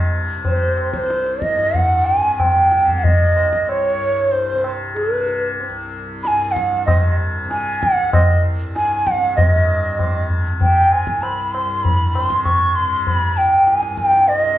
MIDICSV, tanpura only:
0, 0, Header, 1, 2, 480
1, 0, Start_track
1, 0, Tempo, 647249
1, 1297, Time_signature, 4, 2, 24, 8
1, 2732, Tempo, 634921
1, 5612, Tempo, 621762
1, 8492, Tempo, 608519
1, 11139, End_track
2, 0, Start_track
2, 0, Title_t, "Tanpura"
2, 0, Program_c, 0, 104
2, 0, Note_on_c, 0, 36, 59
2, 0, Note_on_c, 0, 43, 61
2, 0, Note_on_c, 0, 48, 58
2, 267, Note_off_c, 0, 48, 0
2, 267, Note_on_c, 0, 48, 61
2, 693, Note_off_c, 0, 36, 0
2, 696, Note_on_c, 0, 36, 67
2, 1144, Note_off_c, 0, 43, 0
2, 1144, Note_on_c, 0, 43, 54
2, 1592, Note_off_c, 0, 48, 0
2, 1595, Note_on_c, 0, 48, 57
2, 2036, Note_off_c, 0, 48, 0
2, 2036, Note_on_c, 0, 48, 65
2, 2464, Note_off_c, 0, 36, 0
2, 2467, Note_on_c, 0, 36, 58
2, 2908, Note_off_c, 0, 43, 0
2, 2911, Note_on_c, 0, 43, 54
2, 3371, Note_off_c, 0, 48, 0
2, 3371, Note_on_c, 0, 48, 60
2, 3814, Note_off_c, 0, 48, 0
2, 3814, Note_on_c, 0, 48, 61
2, 4248, Note_off_c, 0, 36, 0
2, 4251, Note_on_c, 0, 36, 60
2, 4692, Note_off_c, 0, 43, 0
2, 4695, Note_on_c, 0, 43, 58
2, 5137, Note_off_c, 0, 48, 0
2, 5137, Note_on_c, 0, 48, 59
2, 5578, Note_off_c, 0, 48, 0
2, 5578, Note_on_c, 0, 48, 58
2, 6010, Note_off_c, 0, 36, 0
2, 6013, Note_on_c, 0, 36, 58
2, 6456, Note_off_c, 0, 43, 0
2, 6459, Note_on_c, 0, 43, 55
2, 6883, Note_off_c, 0, 48, 0
2, 6883, Note_on_c, 0, 48, 57
2, 7059, Note_off_c, 0, 43, 0
2, 7059, Note_on_c, 0, 43, 63
2, 7509, Note_off_c, 0, 48, 0
2, 7509, Note_on_c, 0, 48, 55
2, 7949, Note_off_c, 0, 48, 0
2, 7949, Note_on_c, 0, 48, 59
2, 8368, Note_off_c, 0, 36, 0
2, 8371, Note_on_c, 0, 36, 63
2, 8822, Note_off_c, 0, 43, 0
2, 8822, Note_on_c, 0, 43, 54
2, 9261, Note_off_c, 0, 48, 0
2, 9264, Note_on_c, 0, 48, 53
2, 9717, Note_off_c, 0, 48, 0
2, 9717, Note_on_c, 0, 48, 64
2, 10140, Note_off_c, 0, 36, 0
2, 10143, Note_on_c, 0, 36, 56
2, 10585, Note_off_c, 0, 43, 0
2, 10588, Note_on_c, 0, 43, 52
2, 11030, Note_off_c, 0, 48, 0
2, 11030, Note_on_c, 0, 48, 60
2, 11139, Note_off_c, 0, 36, 0
2, 11139, Note_off_c, 0, 43, 0
2, 11139, Note_off_c, 0, 48, 0
2, 11139, End_track
0, 0, End_of_file